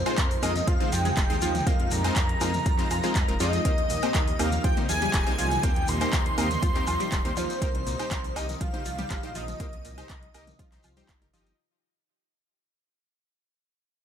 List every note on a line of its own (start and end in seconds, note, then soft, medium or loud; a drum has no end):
0.00 3.61 C3 medium
0.00 3.61 F3 medium
0.00 3.61 G#3 medium
0.00 3.61 D#4 loud
0.00 0.42 C5 loud
0.06 0.15 G#3 medium
0.06 0.15 C4 medium
0.06 0.15 D#4 medium
0.06 0.15 F4 medium
0.06 0.15 C5 medium
0.06 closed hi-hat soft
0.06 high woodblock medium
0.06 shekere medium
0.18 0.37 F2 medium
0.18 0.30 A#4 medium
0.18 kick loud
0.18 clap loud
0.18 closed hi-hat medium
0.18 high conga medium
0.18 shekere soft
0.31 open hi-hat medium
0.42 0.62 F2 medium
0.42 0.53 G#3 medium
0.42 0.51 A#3 medium
0.42 0.53 C4 medium
0.42 0.53 D#4 medium
0.42 0.53 F4 medium
0.42 0.69 D#5 loud
0.42 0.53 D#5 loud
0.42 0.69 D#5 loud
0.42 open hi-hat loud
0.42 high woodblock medium
0.42 shekere loud
0.56 closed hi-hat soft
0.56 high conga loud
0.56 shekere medium
0.67 0.77 F2 loud
0.67 0.76 F3 medium
0.67 0.94 F5 loud
0.67 kick loud
0.67 closed hi-hat medium
0.67 shekere soft
0.80 0.90 G#3 medium
0.80 0.90 C4 medium
0.80 0.90 D#4 medium
0.80 0.90 F4 medium
0.80 0.90 C5 medium
0.80 closed hi-hat soft
0.80 mid tom loud
0.92 1.12 F2 loud
0.92 0.98 F3 medium
0.92 1.68 G5 loud
0.92 open hi-hat loud
0.92 shekere loud
1.05 1.13 G#3 medium
1.05 closed hi-hat soft
1.05 mid tom medium
1.05 high conga medium
1.05 shekere medium
1.17 1.27 F1 loud
1.17 1.29 G#3 medium
1.17 kick loud
1.17 clap loud
1.17 closed hi-hat medium
1.17 shekere soft
1.30 1.39 D#2 loud
1.30 1.36 G#3 loud
1.30 1.36 C4 medium
1.30 1.36 D#4 medium
1.30 1.36 F4 medium
1.30 1.36 C5 loud
1.30 closed hi-hat soft
1.41 1.61 D#2 loud
1.41 1.54 F3 loud
1.41 open hi-hat loud
1.41 high conga loud
1.41 shekere loud
1.55 closed hi-hat soft
1.55 mid tom medium
1.55 shekere medium
1.67 1.76 F2 medium
1.67 1.73 G#3 medium
1.67 1.76 A#3 medium
1.67 1.73 C4 medium
1.67 1.73 D#4 medium
1.67 1.73 F4 medium
1.67 1.73 C5 loud
1.67 1.93 F5 loud
1.67 kick loud
1.67 closed hi-hat medium
1.67 shekere soft
1.80 1.89 F2 medium
1.80 closed hi-hat soft
1.80 high conga medium
1.91 2.11 F2 medium
1.91 1.97 A#2 medium
1.91 3.40 A#5 loud
1.91 open hi-hat loud
1.91 shekere loud
2.04 2.14 G#3 medium
2.04 2.14 C4 medium
2.04 2.14 D#4 medium
2.04 2.14 F4 medium
2.04 2.14 C5 medium
2.04 closed hi-hat soft
2.04 high woodblock medium
2.04 shekere medium
2.16 2.35 F2 medium
2.16 2.29 A#4 medium
2.16 kick loud
2.16 clap loud
2.16 closed hi-hat medium
2.16 high conga medium
2.16 shekere soft
2.29 closed hi-hat soft
2.41 2.60 F2 medium
2.41 2.51 G#3 medium
2.41 2.50 A#3 medium
2.41 2.51 C4 medium
2.41 2.51 D#4 medium
2.41 2.51 F4 medium
2.41 2.51 D#5 loud
2.41 open hi-hat loud
2.41 high woodblock medium
2.41 shekere loud
2.54 closed hi-hat soft
2.54 mid tom medium
2.54 high conga medium
2.54 shekere soft
2.65 2.85 F2 loud
2.65 2.75 F3 medium
2.65 kick loud
2.65 closed hi-hat medium
2.65 shekere soft
2.79 2.88 G#3 medium
2.79 2.88 C4 medium
2.79 2.88 D#4 medium
2.79 2.88 F4 medium
2.79 2.88 C5 medium
2.79 clap soft
2.79 closed hi-hat soft
2.90 3.00 F2 medium
2.90 2.96 F3 medium
2.90 open hi-hat loud
2.90 high woodblock medium
2.90 shekere medium
3.03 3.25 G#3 medium
3.03 3.12 G#3 medium
3.03 3.25 C4 medium
3.03 3.25 D#4 medium
3.03 3.25 F4 medium
3.03 3.25 C5 medium
3.03 closed hi-hat soft
3.03 high conga medium
3.03 shekere medium
3.15 3.25 F2 medium
3.15 3.28 G#3 medium
3.15 kick loud
3.15 clap loud
3.15 closed hi-hat medium
3.15 shekere soft
3.28 3.37 F1 medium
3.28 3.34 G#3 medium
3.28 3.34 C4 medium
3.28 3.34 D#4 medium
3.28 3.34 F4 medium
3.28 3.34 A#4 medium
3.28 closed hi-hat soft
3.40 3.59 F2 medium
3.40 3.53 F3 loud
3.40 3.62 G#3 loud
3.40 3.62 C4 medium
3.40 3.62 D#4 medium
3.40 3.62 F4 medium
3.40 4.41 D#5 loud
3.40 3.62 D#5 loud
3.40 4.41 D#5 loud
3.40 open hi-hat loud
3.40 high conga loud
3.40 shekere medium
3.53 closed hi-hat soft
3.53 shekere soft
3.65 3.75 D#2 loud
3.65 11.55 C3 medium
3.65 11.55 G3 medium
3.65 3.71 A#3 medium
3.65 3.74 A#3 medium
3.65 7.58 A#3 medium
3.65 3.71 C4 medium
3.65 3.71 D#4 medium
3.65 11.55 D#4 medium
3.65 3.71 G4 medium
3.65 3.71 C5 loud
3.65 kick loud
3.65 closed hi-hat medium
3.65 shekere soft
3.78 3.87 D#2 medium
3.78 closed hi-hat soft
3.78 high conga medium
3.90 4.00 D#2 medium
3.90 3.95 A#2 medium
3.90 open hi-hat loud
3.90 shekere medium
4.02 4.12 A#3 medium
4.02 4.12 C4 medium
4.02 4.12 D#4 medium
4.02 4.12 G4 medium
4.02 4.12 C5 medium
4.02 closed hi-hat soft
4.02 high woodblock medium
4.02 shekere soft
4.15 4.34 D#2 medium
4.15 4.27 A#4 medium
4.15 kick loud
4.15 clap loud
4.15 closed hi-hat medium
4.15 high conga medium
4.15 shekere soft
4.28 open hi-hat medium
4.39 4.59 D#2 medium
4.39 4.50 A#3 medium
4.39 4.48 A#3 medium
4.39 4.50 C4 medium
4.39 4.50 D#4 medium
4.39 4.49 G4 medium
4.39 4.50 D#5 loud
4.39 4.64 F5 loud
4.39 open hi-hat loud
4.39 high woodblock medium
4.39 shekere loud
4.52 closed hi-hat soft
4.52 high conga medium
4.52 shekere medium
4.64 4.74 D#2 loud
4.64 4.73 F3 medium
4.64 4.75 G5 loud
4.64 4.76 G5 loud
4.64 kick loud
4.64 closed hi-hat medium
4.64 shekere soft
4.77 4.86 A#3 medium
4.77 4.86 C4 medium
4.77 4.86 D#4 medium
4.77 4.86 G4 medium
4.77 4.86 C5 medium
4.77 closed hi-hat soft
4.77 mid tom medium
4.89 5.08 D#2 loud
4.89 4.94 F3 medium
4.89 5.65 G#5 loud
4.89 open hi-hat loud
4.89 shekere loud
5.02 5.10 G3 medium
5.02 closed hi-hat soft
5.02 mid tom medium
5.02 high conga medium
5.02 shekere medium
5.14 5.24 D#1 loud
5.14 5.26 G3 medium
5.14 kick loud
5.14 clap loud
5.14 closed hi-hat medium
5.14 shekere soft
5.27 5.36 C2 loud
5.27 5.33 A#3 loud
5.27 5.33 C4 medium
5.27 5.33 D#4 medium
5.27 5.33 G4 medium
5.27 5.33 C5 loud
5.27 closed hi-hat soft
5.38 5.58 C2 loud
5.38 5.51 F3 loud
5.38 open hi-hat loud
5.38 high conga medium
5.38 shekere medium
5.51 closed hi-hat soft
5.51 mid tom medium
5.51 shekere soft
5.63 5.73 D#2 medium
5.63 5.70 A#3 medium
5.63 5.72 A#3 medium
5.63 5.70 C4 medium
5.63 5.70 D#4 medium
5.63 5.70 G4 medium
5.63 5.70 C5 loud
5.63 5.90 G5 loud
5.63 kick loud
5.63 closed hi-hat medium
5.63 shekere soft
5.76 5.85 D#2 medium
5.76 closed hi-hat soft
5.76 high conga medium
5.88 6.07 D#2 medium
5.88 5.93 A#2 medium
5.88 7.38 C6 loud
5.88 open hi-hat loud
5.88 shekere medium
6.01 6.10 A#3 medium
6.01 6.10 C4 medium
6.01 6.10 D#4 medium
6.01 6.10 G4 medium
6.01 6.10 C5 medium
6.01 closed hi-hat soft
6.01 high woodblock medium
6.01 shekere medium
6.13 6.32 D#2 medium
6.13 6.25 A#4 medium
6.13 kick loud
6.13 clap loud
6.13 closed hi-hat medium
6.13 high conga medium
6.13 shekere soft
6.26 closed hi-hat soft
6.38 6.57 D#2 medium
6.38 6.46 A#3 medium
6.38 6.48 A#3 medium
6.38 6.48 C4 medium
6.38 6.48 D#4 medium
6.38 6.48 G4 medium
6.38 6.48 D#5 loud
6.38 open hi-hat loud
6.38 high woodblock medium
6.38 shekere medium
6.51 closed hi-hat soft
6.51 mid tom medium
6.51 high conga medium
6.51 shekere soft
6.62 6.82 D#2 loud
6.62 6.71 F3 medium
6.62 kick loud
6.62 closed hi-hat medium
6.62 shekere soft
6.75 6.85 A#3 medium
6.75 6.85 C4 medium
6.75 6.85 D#4 medium
6.75 6.85 G4 medium
6.75 6.85 C5 medium
6.75 clap soft
6.75 closed hi-hat soft
6.87 6.97 D#2 medium
6.87 6.93 F3 medium
6.87 open hi-hat loud
6.87 high woodblock medium
6.87 shekere medium
7.00 7.08 G3 medium
7.00 closed hi-hat soft
7.00 high conga medium
7.00 shekere medium
7.12 7.22 D#1 medium
7.12 7.24 G3 medium
7.12 kick loud
7.12 clap loud
7.12 closed hi-hat medium
7.12 shekere soft
7.25 7.34 D#2 loud
7.25 7.31 A#3 loud
7.25 7.31 C4 medium
7.25 7.31 D#4 loud
7.25 7.31 G4 medium
7.25 7.31 C5 loud
7.25 closed hi-hat soft
7.37 7.47 D#2 loud
7.37 7.49 F3 loud
7.37 8.37 C5 loud
7.37 open hi-hat loud
7.37 high conga medium
7.37 shekere medium
7.50 closed hi-hat soft
7.50 shekere medium
7.62 7.72 C2 loud
7.62 11.55 D#3 medium
7.62 7.70 A#3 medium
7.62 7.68 D#4 medium
7.62 7.68 G4 medium
7.62 7.68 C5 medium
7.62 kick loud
7.62 closed hi-hat loud
7.62 shekere soft
7.75 7.84 C2 medium
7.75 closed hi-hat soft
7.75 high conga medium
7.86 7.96 C2 medium
7.86 7.92 A#2 medium
7.86 open hi-hat loud
7.86 shekere medium
7.99 8.09 D#4 medium
7.99 8.09 G4 medium
7.99 8.09 C5 medium
7.99 closed hi-hat soft
7.99 high woodblock medium
7.99 shekere medium
8.11 8.30 C2 medium
8.11 8.24 A#4 medium
8.11 kick loud
8.11 clap loud
8.11 closed hi-hat medium
8.11 high conga medium
8.11 shekere soft
8.24 open hi-hat medium
8.36 8.55 C2 medium
8.36 8.45 A#3 medium
8.36 8.46 D#4 medium
8.36 8.46 G4 medium
8.36 8.60 D#5 loud
8.36 8.46 D#5 loud
8.36 open hi-hat loud
8.36 high woodblock medium
8.36 shekere medium
8.49 closed hi-hat soft
8.49 high conga medium
8.49 shekere medium
8.61 8.71 C2 loud
8.61 8.70 F3 medium
8.61 9.37 F5 loud
8.61 kick loud
8.61 closed hi-hat medium
8.61 shekere soft
8.74 8.83 D#4 medium
8.74 8.83 G4 medium
8.74 8.83 C5 medium
8.74 closed hi-hat soft
8.74 mid tom medium
8.85 9.05 C2 loud
8.85 8.91 F3 medium
8.85 open hi-hat loud
8.85 shekere medium
8.98 9.07 G3 medium
8.98 closed hi-hat soft
8.98 mid tom medium
8.98 high conga medium
8.98 shekere medium
9.10 9.20 G1 loud
9.10 9.23 G3 medium
9.10 kick medium
9.10 clap loud
9.10 closed hi-hat medium
9.10 shekere soft
9.23 9.32 A#1 loud
9.23 9.29 D#4 loud
9.23 9.29 G4 medium
9.23 9.29 C5 loud
9.23 closed hi-hat soft
9.35 9.54 A#1 loud
9.35 9.48 F3 loud
9.35 11.09 D#5 loud
9.35 open hi-hat loud
9.35 high conga loud
9.35 shekere medium
9.48 closed hi-hat soft
9.48 mid tom medium
9.48 shekere soft
9.60 9.70 C2 medium
9.60 9.69 A#3 medium
9.60 9.66 D#4 medium
9.60 9.66 G4 medium
9.60 9.66 C5 medium
9.60 kick loud
9.60 closed hi-hat loud
9.60 shekere soft
9.73 9.82 C2 medium
9.73 closed hi-hat soft
9.73 high conga loud
9.85 10.04 C2 medium
9.85 9.90 A#2 medium
9.85 open hi-hat loud
9.85 shekere medium
9.98 10.07 D#4 medium
9.98 10.07 G4 medium
9.98 10.07 C5 medium
9.98 closed hi-hat soft
9.98 high woodblock medium
9.98 shekere medium
10.10 10.29 C2 medium
10.10 10.22 A#4 medium
10.10 kick loud
10.10 clap loud
10.10 closed hi-hat loud
10.10 high conga medium
10.10 shekere soft
10.23 closed hi-hat soft
10.34 10.54 C2 medium
10.34 10.43 A#3 medium
10.34 10.45 D#4 medium
10.34 10.45 G4 medium
10.34 10.45 D#5 loud
10.34 open hi-hat loud
10.34 high woodblock medium
10.34 shekere medium
10.47 closed hi-hat soft
10.47 mid tom medium
10.47 high conga loud
10.47 shekere medium
10.59 10.78 C2 loud
10.59 10.68 F3 medium
10.59 kick loud
10.59 closed hi-hat medium
10.59 shekere soft
10.72 10.81 D#4 medium
10.72 10.81 G4 medium
10.72 10.81 C5 medium
10.72 clap soft
10.72 open hi-hat medium
10.83 11.03 C2 loud
10.83 10.89 F3 medium
10.83 open hi-hat loud
10.83 high woodblock medium
10.83 shekere medium
10.97 11.05 G3 medium
10.97 11.19 D#4 medium
10.97 11.19 G4 medium
10.97 11.19 C5 medium
10.97 closed hi-hat soft
10.97 high conga medium
10.97 shekere medium
11.09 11.19 G1 medium
11.09 11.21 G3 medium
11.09 kick loud
11.09 clap loud
11.09 closed hi-hat loud
11.09 shekere soft
11.22 11.31 G1 medium
11.22 11.28 D#4 medium
11.22 11.28 G4 medium
11.22 11.28 A#4 medium
11.22 closed hi-hat soft
11.22 mid tom medium
11.33 11.53 G1 medium
11.33 11.46 F3 loud
11.33 11.56 D#4 loud
11.33 11.56 G4 medium
11.33 11.56 D#5 loud
11.33 open hi-hat loud
11.33 high conga loud
11.33 shekere medium
11.46 closed hi-hat soft
11.46 shekere soft